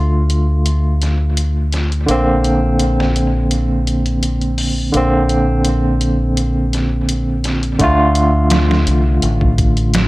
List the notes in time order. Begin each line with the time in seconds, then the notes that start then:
Already playing: D2 D3 A3 F4
0.30 closed hi-hat
0.66 closed hi-hat
1.02 snare, closed hi-hat
1.37 closed hi-hat
1.72 snare, closed hi-hat
1.92 closed hi-hat
2.06 A#1 D3 A#3, closed hi-hat
2.11 C4
2.44 closed hi-hat
2.79 closed hi-hat
3.00 snare
3.16 closed hi-hat
3.51 closed hi-hat
3.87 closed hi-hat
4.06 closed hi-hat
4.23 closed hi-hat
4.42 closed hi-hat
4.58 open hi-hat
4.92 A#1 D3 A#3, closed hi-hat
4.97 C4
5.29 closed hi-hat
5.65 closed hi-hat
6.01 closed hi-hat
6.37 closed hi-hat
6.73 snare, closed hi-hat
7.09 closed hi-hat
7.44 snare, closed hi-hat
7.63 closed hi-hat
7.79 D2 D3 A3, kick, closed hi-hat
7.84 F4
8.15 closed hi-hat
8.50 snare, closed hi-hat
8.71 snare
8.87 C2, closed hi-hat
9.22 A1, closed hi-hat
9.41 kick
9.58 kick, closed hi-hat
9.77 closed hi-hat
9.94 snare, closed hi-hat